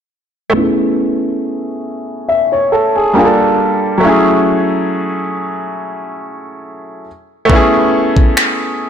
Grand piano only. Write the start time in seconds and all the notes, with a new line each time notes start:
0.50 A3 B3
0.55 C#4 E4
0.60 G#4
2.29 E5
2.52 C#5
2.72 A4
2.95 G#4
3.13 G3 A#3 D4 F4
3.18 G#4
3.25 A4
3.98 F#3 A3
4.02 C#4 E4
4.07 G#4
7.45 A3 B3
7.50 C#4 E4
7.55 G#4